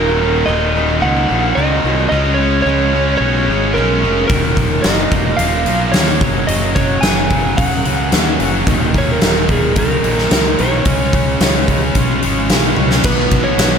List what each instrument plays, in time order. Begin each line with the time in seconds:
Already playing: fingered electric bass D#1, overdriven electric guitar D#2 A#2 D#3 A#3, electric slide guitar A#4
0.08 steel-string acoustic guitar A#3 D#4 F#4
0.21 overdriven electric guitar D#2 A#2 D#3
0.46 fingered electric bass D#1, overdriven electric guitar D#2, steel-string acoustic guitar D#3 A#3 D#4 F#4, electric slide guitar D#5
0.50 overdriven electric guitar A#2 D#3
0.76 overdriven electric guitar D#2 A#2 D#3, steel-string acoustic guitar D#3 A#3 D#4 F#4
0.89 steel-string acoustic guitar A#3 D#4 F#4
1.01 fingered electric bass C#2, overdriven electric guitar D#2 A#2 D#3, electric slide guitar F#5
1.15 steel-string acoustic guitar A#3 D#4 F#4
1.29 fingered electric bass A#1, overdriven electric guitar D#2 A#2 D#3, steel-string acoustic guitar D#3 A#3 D#4 F#4
1.55 fingered electric bass C#2, overdriven electric guitar D#2 A#2 D#3, steel-string acoustic guitar D#3 A#3 D#4, electric slide guitar D#5
1.59 steel-string acoustic guitar F#4
1.72 steel-string acoustic guitar A#3 D#4 F#4
1.83 fingered electric bass C2, overdriven electric guitar D#2 A#2 D#3, steel-string acoustic guitar D#3 A#3 D#4
1.87 steel-string acoustic guitar F#4
1.99 steel-string acoustic guitar A#3 D#4 F#4
2.09 fingered electric bass C#2, overdriven electric guitar C#3 G#3 C#4, steel-string acoustic guitar C#3 F3 G#3, electric slide guitar D#5
2.13 steel-string acoustic guitar C#4 F4
2.25 steel-string acoustic guitar G#3 C#4 F4
2.34 overdriven electric guitar C#3 G#3, electric slide guitar C#5
2.39 overdriven electric guitar C#4
2.62 fingered electric bass C#2, overdriven electric guitar C#3 G#3 C#4, steel-string acoustic guitar C#3, electric slide guitar C#5
2.67 steel-string acoustic guitar F3 G#3 C#4 F4
2.93 overdriven electric guitar C#3 G#3 C#4, steel-string acoustic guitar F3 G#3
2.97 steel-string acoustic guitar C#4
3.18 fingered electric bass B1, overdriven electric guitar C#3 G#3 C#4, electric slide guitar C#5
3.36 steel-string acoustic guitar G#3 C#4 F4
3.47 fingered electric bass G#1, overdriven electric guitar C#3 G#3 C#4, steel-string acoustic guitar F3 G#3
3.52 steel-string acoustic guitar C#4 F4
3.73 overdriven electric guitar C#3 G#3 C#4, steel-string acoustic guitar C#3 F3, electric slide guitar A#4
3.78 fingered electric bass B1, steel-string acoustic guitar G#3 C#4 F4
3.91 steel-string acoustic guitar G#3 C#4 F4
4.00 fingered electric bass F1, overdriven electric guitar C#3 G#3 C#4, steel-string acoustic guitar F3
4.05 steel-string acoustic guitar G#3 C#4 F4
4.18 steel-string acoustic guitar G#3 C#4 F4
4.28 fingered electric bass D#1, overdriven electric guitar D#2 A#2 D#3, steel-string acoustic guitar D#3, electric slide guitar A#4, kick, open hi-hat
4.32 steel-string acoustic guitar A#3 D#4 F#4
4.44 steel-string acoustic guitar A#3 D#4 F#4
4.57 overdriven electric guitar D#2 A#2 D#3, kick, open hi-hat
4.82 fingered electric bass F#1, overdriven electric guitar D#2 A#2, steel-string acoustic guitar D#3 A#3, electric slide guitar D#5, snare, open hi-hat
4.86 overdriven electric guitar D#3, steel-string acoustic guitar D#4 F#4
5.12 fingered electric bass F1, overdriven electric guitar A#2 F3 A#3, steel-string acoustic guitar F3 A#3 C#4 F4, kick, open hi-hat
5.37 fingered electric bass D#1, overdriven electric guitar A#2 F3, electric slide guitar F5, open hi-hat
5.41 overdriven electric guitar A#3
5.54 steel-string acoustic guitar A#3 C#4 F4
5.65 fingered electric bass B1, overdriven electric guitar A#2 F3 A#3, steel-string acoustic guitar F3 A#3 C#4, open hi-hat
5.70 steel-string acoustic guitar F4
5.92 fingered electric bass D#2, overdriven electric guitar A#2, steel-string acoustic guitar F3 A#3 C#4 F4, electric slide guitar C#5, snare, open hi-hat
5.96 overdriven electric guitar F3 A#3
6.08 steel-string acoustic guitar A#3 C#4 F4
6.18 fingered electric bass F#1, overdriven electric guitar F#2 C#3, steel-string acoustic guitar F#3 A#3 C#4 G#4, kick, open hi-hat
6.22 overdriven electric guitar F#3
6.34 steel-string acoustic guitar A#3 C#4 G#4
6.47 fingered electric bass F#1, overdriven electric guitar F#2 C#3 F#3, steel-string acoustic guitar F#3 A#3 C#4 G#4, electric slide guitar D#5, open hi-hat
6.60 steel-string acoustic guitar A#3 C#4 G#4
6.75 overdriven electric guitar F#2 C#3 F#3, electric slide guitar C#5, kick, open hi-hat
7.01 fingered electric bass F#1, overdriven electric guitar F#2 C#3 F#3, steel-string acoustic guitar F#3 A#3, electric slide guitar G#5, snare, open hi-hat
7.05 steel-string acoustic guitar C#4 G#4
7.29 overdriven electric guitar F#2 C#3 F#3, steel-string acoustic guitar F#3 A#3 C#4 G#4, kick, open hi-hat
7.45 steel-string acoustic guitar A#3 C#4 G#4
7.57 fingered electric bass D#1, overdriven electric guitar F#2 C#3 F#3, electric slide guitar F#5, kick, open hi-hat
7.72 steel-string acoustic guitar A#3 C#4 G#4
7.83 fingered electric bass C#2, overdriven electric guitar F#2 C#3 F#3, steel-string acoustic guitar F#3 A#3, open hi-hat
7.89 steel-string acoustic guitar C#4 G#4
8.11 fingered electric bass D#2, overdriven electric guitar F#2 C#3 F#3, steel-string acoustic guitar F#3 A#3 C#4 G#4, snare, open hi-hat
8.40 fingered electric bass F#1, overdriven electric guitar F#2 C#3 F#3, steel-string acoustic guitar F#3 A#3 C#4, open hi-hat
8.44 steel-string acoustic guitar G#4
8.52 steel-string acoustic guitar C#4 G#4
8.56 steel-string acoustic guitar A#3
8.66 fingered electric bass D#1, overdriven electric guitar D#2 A#2 D#3, steel-string acoustic guitar D#3 A#3 D#4 F#4, kick, open hi-hat
8.81 steel-string acoustic guitar A#3 D#4 F#4
8.94 overdriven electric guitar D#2 A#2 D#3, kick, open hi-hat
8.98 electric slide guitar C#5
9.12 electric slide guitar A#4
9.20 fingered electric bass D#1, overdriven electric guitar D#2 A#2 D#3, steel-string acoustic guitar D#3 A#3 D#4 F#4, snare, open hi-hat
9.47 overdriven electric guitar D#2 A#2 D#3, steel-string acoustic guitar D#3 A#3 D#4, kick, open hi-hat
9.52 steel-string acoustic guitar F#4, electric slide guitar G#4
9.76 fingered electric bass C#2, overdriven electric guitar D#2 A#2 D#3, electric slide guitar A#4, kick, open hi-hat
9.91 steel-string acoustic guitar A#3 D#4 F#4
10.01 fingered electric bass A#1, overdriven electric guitar D#2 A#2 D#3, steel-string acoustic guitar D#3 A#3 D#4 F#4, open hi-hat
10.18 snare
10.30 fingered electric bass C#2, overdriven electric guitar D#2 A#2 D#3, steel-string acoustic guitar D#3 A#3 D#4 F#4, electric slide guitar A#4, snare, open hi-hat
10.45 steel-string acoustic guitar A#3 D#4 F#4
10.58 fingered electric bass B1, overdriven electric guitar D#2 A#2 D#3, steel-string acoustic guitar D#3 A#3 D#4, electric slide guitar C#5, open hi-hat
10.63 steel-string acoustic guitar F#4
10.73 steel-string acoustic guitar A#3 D#4 F#4
10.85 fingered electric bass C#2, overdriven electric guitar C#3 G#3 C#4, steel-string acoustic guitar C#3 F3 G#3 C#4 F4, kick, open hi-hat
10.99 steel-string acoustic guitar G#3 C#4 F4
11.13 overdriven electric guitar C#3 G#3 C#4, kick, open hi-hat
11.40 fingered electric bass C#2, steel-string acoustic guitar C#3 F3 G#3 C#4 F4, overdriven electric guitar C#3 G#3 C#4, snare, open hi-hat
11.68 overdriven electric guitar C#3 G#3 C#4, steel-string acoustic guitar F3 G#3 C#4 F4, kick, open hi-hat
11.82 steel-string acoustic guitar G#3 C#4 F4
11.95 fingered electric bass B1, overdriven electric guitar C#3 G#3 C#4, kick, open hi-hat
12.10 steel-string acoustic guitar G#3 C#4 F4
12.21 fingered electric bass G#1, overdriven electric guitar C#3 G#3 C#4, steel-string acoustic guitar F3, open hi-hat
12.26 steel-string acoustic guitar G#3 C#4 F4
12.49 fingered electric bass B1, overdriven electric guitar C#3 G#3 C#4, steel-string acoustic guitar C#3 F3 G#3 C#4 F4, snare, open hi-hat
12.76 fingered electric bass C#2, overdriven electric guitar C#3 G#3 C#4, steel-string acoustic guitar F3 G#3 C#4 F4, high tom
12.90 steel-string acoustic guitar G#3 C#4 F4, snare
13.04 fingered electric bass B1, overdriven electric guitar B2 F#3 B3, steel-string acoustic guitar B2 D#3 B3 D#4, electric slide guitar B4, kick, crash
13.09 steel-string acoustic guitar F#4
13.31 fingered electric bass B1, steel-string acoustic guitar D#3 B3 D#4, kick, ride
13.36 steel-string acoustic guitar F#4
13.44 electric slide guitar C#5
13.57 fingered electric bass B1, steel-string acoustic guitar B2 D#3 B3, snare, ride
13.62 steel-string acoustic guitar D#4 F#4